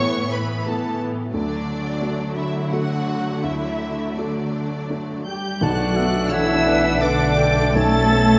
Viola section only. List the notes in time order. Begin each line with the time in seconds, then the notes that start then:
Already playing: E3 B3
1.35 F#3 A3
5.28 G4
5.63 F#4
6.32 E4
7.02 D4
7.74 A4